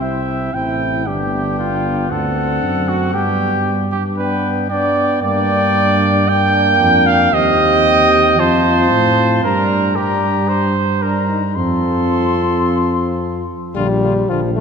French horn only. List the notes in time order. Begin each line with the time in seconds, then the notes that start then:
0.01 E4
0.55 E4
1.07 D4
2.10 D4
3.14 D4
4.17 D4
4.71 D4
5.22 D4
6.29 D4
7.33 G4
8.38 F4
9.44 D4
9.98 D4
11.02 D4
11.29 D#4
11.57 F4
13.75 G3
14.29 F3
14.55 A3